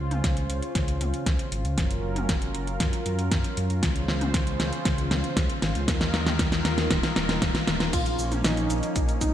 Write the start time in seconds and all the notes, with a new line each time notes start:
Already playing: C#3 C#4 F4 C5
0.00 C#2
0.11 closed hi-hat, mid tom
0.24 C#2, kick, snare, closed hi-hat
0.37 closed hi-hat
0.50 C#2, closed hi-hat
0.62 closed hi-hat
0.75 C#2, kick, snare, closed hi-hat
0.88 closed hi-hat
1.01 C#2, closed hi-hat, mid tom
1.14 closed hi-hat
1.26 C#2, kick, snare, closed hi-hat
1.39 closed hi-hat
1.52 G#1, closed hi-hat
1.65 C#2, closed hi-hat
1.78 F#1 F#3 C#4 A#4, kick, snare, closed hi-hat
1.91 closed hi-hat
2.03 F#1
2.16 closed hi-hat, mid tom
2.29 F#1, kick, snare, closed hi-hat
2.42 closed hi-hat
2.55 F#1, closed hi-hat
2.67 closed hi-hat
2.80 F#2, kick, snare, closed hi-hat
2.93 closed hi-hat
3.06 F#2, closed hi-hat
3.19 closed hi-hat
3.31 F#2, kick, snare, closed hi-hat
3.44 closed hi-hat
3.57 F#2, closed hi-hat
3.70 F#2, closed hi-hat
3.83 C#2 C#3 C5, kick, snare, closed hi-hat
3.96 closed hi-hat
4.08 C#2, snare
4.21 closed hi-hat, mid tom
4.34 C#2, kick, snare, closed hi-hat
4.47 closed hi-hat
4.60 C#2, snare, closed hi-hat
4.73 closed hi-hat
4.85 C#2, kick, snare, closed hi-hat
4.98 closed hi-hat
5.11 C#2, snare, closed hi-hat, mid tom
5.24 closed hi-hat
5.37 C#2, kick, snare, closed hi-hat
5.50 closed hi-hat
5.62 G#1, snare, closed hi-hat
5.75 C#2, closed hi-hat
5.88 D#2 D#3 A#4, kick, snare, closed hi-hat
6.01 snare, closed hi-hat
6.14 D#2, snare, closed hi-hat
6.27 snare, closed hi-hat, mid tom
6.39 D#2, kick, snare, closed hi-hat
6.52 snare, closed hi-hat
6.65 D#2, snare, closed hi-hat
6.78 snare, closed hi-hat
6.91 D#1, kick, snare, closed hi-hat
7.03 snare, closed hi-hat
7.16 D#1, snare, closed hi-hat
7.29 snare, closed hi-hat
7.42 D#1, kick, snare, closed hi-hat
7.55 snare, closed hi-hat
7.67 D#1, snare, closed hi-hat
7.80 D#1, snare, closed hi-hat
7.93 A#1 F3 A#3 C#4 F4, kick, closed hi-hat, crash, shaker
8.06 closed hi-hat, shaker
8.19 A#1, shaker
8.32 closed hi-hat, mid tom, shaker
8.44 A#1 D#4, snare, closed hi-hat, shaker
8.57 closed hi-hat, shaker
8.70 A#1, closed hi-hat, shaker
8.83 closed hi-hat, shaker
8.96 A#1, kick, closed hi-hat, shaker
9.09 closed hi-hat, shaker
9.21 A#1 D#4, kick, closed hi-hat, mid tom, shaker